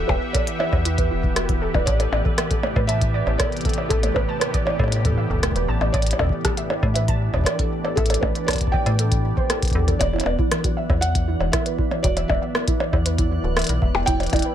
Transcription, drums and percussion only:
0.09 kick, percussion blips
0.35 kick, closed hi-hat
0.47 closed hi-hat
0.60 percussion blips
0.73 kick, percussion blips
0.85 closed hi-hat
0.98 kick, closed hi-hat
1.24 kick
1.36 cross-stick, closed hi-hat
1.49 kick, closed hi-hat
1.74 kick, percussion blips
1.87 kick, closed hi-hat
2.00 closed hi-hat, percussion blips
2.13 percussion blips
2.25 kick
2.38 cross-stick, closed hi-hat
2.51 kick, closed hi-hat
2.63 percussion blips
2.76 kick, percussion blips
2.89 closed hi-hat
3.01 kick, closed hi-hat
3.27 percussion blips
3.40 kick, cross-stick, closed hi-hat
3.52 closed hi-hat
3.57 closed hi-hat
3.61 closed hi-hat
3.65 kick, closed hi-hat
3.69 closed hi-hat
3.74 closed hi-hat
3.78 percussion blips
3.90 kick, closed hi-hat
4.03 closed hi-hat, percussion blips
4.16 kick, percussion blips
4.41 cross-stick, closed hi-hat
4.54 kick, closed hi-hat
4.67 percussion blips
4.79 kick, percussion blips
4.84 percussion blips
4.88 percussion blips
4.92 closed hi-hat, percussion blips
4.96 percussion blips
5.01 percussion blips
5.05 kick, closed hi-hat
5.07 kick
5.10 kick
5.12 kick
5.15 kick
5.30 kick
5.35 kick
5.39 kick
5.43 kick, cross-stick, closed hi-hat
5.47 kick
5.51 kick
5.56 closed hi-hat
5.81 percussion blips
5.94 kick, closed hi-hat
6.02 closed hi-hat
6.07 closed hi-hat
6.11 closed hi-hat, percussion blips
6.19 kick, percussion blips
6.22 kick
6.24 kick
6.27 kick
6.29 kick
6.45 kick, cross-stick, closed hi-hat
6.57 closed hi-hat
6.70 percussion blips
6.83 kick, percussion blips
6.96 closed hi-hat
7.08 kick, closed hi-hat
7.34 kick, percussion blips
7.36 kick
7.39 kick
7.41 kick
7.44 kick, cross-stick, closed hi-hat
7.59 kick, closed hi-hat
7.85 percussion blips
7.97 kick, closed hi-hat
8.06 closed hi-hat
8.10 closed hi-hat, percussion blips
8.14 closed hi-hat
8.23 kick, percussion blips
8.35 closed hi-hat
8.48 kick, cross-stick, closed hi-hat
8.51 closed hi-hat
8.53 kick, closed hi-hat
8.56 closed hi-hat
8.58 kick, closed hi-hat
8.61 closed hi-hat
8.67 kick
8.73 kick
8.86 closed hi-hat, percussion blips
8.99 closed hi-hat
9.12 kick, closed hi-hat
9.37 kick
9.50 cross-stick, closed hi-hat
9.62 kick, closed hi-hat
9.65 closed hi-hat
9.68 closed hi-hat
9.70 kick, closed hi-hat
9.73 closed hi-hat
9.79 kick
9.88 kick, closed hi-hat
10.01 kick, closed hi-hat, percussion blips
10.13 percussion blips
10.16 percussion blips
10.18 closed hi-hat, percussion blips
10.21 percussion blips
10.24 percussion blips
10.26 percussion blips
10.39 kick
10.52 cross-stick, closed hi-hat
10.64 kick, closed hi-hat
10.90 kick, percussion blips
11.02 closed hi-hat
11.15 kick, closed hi-hat
11.41 percussion blips
11.53 kick, cross-stick, closed hi-hat
11.66 closed hi-hat
11.79 kick
11.91 percussion blips
12.04 kick, closed hi-hat
12.17 closed hi-hat, percussion blips
12.29 kick, percussion blips
12.55 cross-stick
12.68 kick, closed hi-hat
12.80 percussion blips
12.93 kick, percussion blips
13.06 closed hi-hat
13.18 kick, closed hi-hat
13.57 cross-stick, closed hi-hat
13.59 closed hi-hat
13.62 closed hi-hat
13.64 closed hi-hat
13.67 closed hi-hat
13.69 closed hi-hat
13.82 kick
13.95 percussion blips
14.07 kick, closed hi-hat
14.20 closed hi-hat, percussion blips
14.23 closed hi-hat
14.26 closed hi-hat
14.30 kick, closed hi-hat
14.33 closed hi-hat, percussion blips
14.36 closed hi-hat
14.39 closed hi-hat
14.42 closed hi-hat

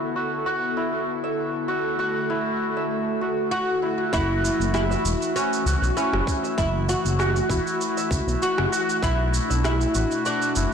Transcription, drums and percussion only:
4.13 kick, cabasa
4.45 cabasa
4.61 cabasa
4.75 cross-stick, cabasa
4.91 cabasa
5.05 cabasa
5.22 cabasa
5.36 cabasa
5.53 cabasa
5.67 cabasa
5.83 cabasa
5.97 cabasa
6.13 cross-stick
6.27 kick, cabasa
6.44 cabasa
6.58 kick, cabasa
6.89 cabasa
7.06 cabasa
7.20 cross-stick, cabasa
7.36 cabasa
7.50 kick, cabasa
7.67 cabasa
7.81 cabasa
7.97 cabasa
8.11 kick, cabasa
8.28 cabasa
8.42 cabasa
8.58 cross-stick
8.73 cabasa
8.89 cabasa
9.03 kick, cabasa
9.34 cabasa
9.51 cabasa
9.64 cross-stick, cabasa
9.81 cabasa
9.95 cabasa
10.11 cabasa
10.26 cabasa
10.42 cabasa
10.56 cabasa

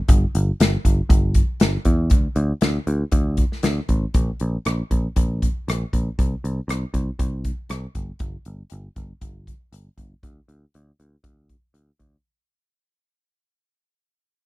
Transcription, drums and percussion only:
0.08 kick, closed hi-hat
0.35 closed hi-hat
0.60 snare, closed hi-hat
0.85 kick, closed hi-hat
1.10 kick, closed hi-hat
1.34 kick, closed hi-hat
1.60 snare, closed hi-hat
1.85 kick, closed hi-hat
2.10 kick, closed hi-hat
2.36 closed hi-hat
2.61 snare, closed hi-hat
2.87 closed hi-hat
3.12 kick, closed hi-hat
3.37 kick, closed hi-hat
3.52 snare
3.63 snare, closed hi-hat
3.89 kick, closed hi-hat
4.14 kick, closed hi-hat
4.40 closed hi-hat
4.65 cross-stick, closed hi-hat
4.91 kick, closed hi-hat
5.16 kick, closed hi-hat
5.42 kick, closed hi-hat
5.68 cross-stick, closed hi-hat
5.93 kick, closed hi-hat
6.19 kick, closed hi-hat
6.45 closed hi-hat
6.69 cross-stick, closed hi-hat
6.94 kick, closed hi-hat
7.19 kick, closed hi-hat
7.44 kick, closed hi-hat
7.69 cross-stick, closed hi-hat
7.95 kick, closed hi-hat
8.19 kick, closed hi-hat
8.45 closed hi-hat
8.70 closed hi-hat
8.96 kick, closed hi-hat
9.21 kick, closed hi-hat
9.47 kick, closed hi-hat
9.73 closed hi-hat
9.98 kick, closed hi-hat
10.23 kick, closed hi-hat
10.49 closed hi-hat
10.74 closed hi-hat
11.00 closed hi-hat
11.24 kick, closed hi-hat
11.49 kick, closed hi-hat
11.74 closed hi-hat
12.00 kick, closed hi-hat

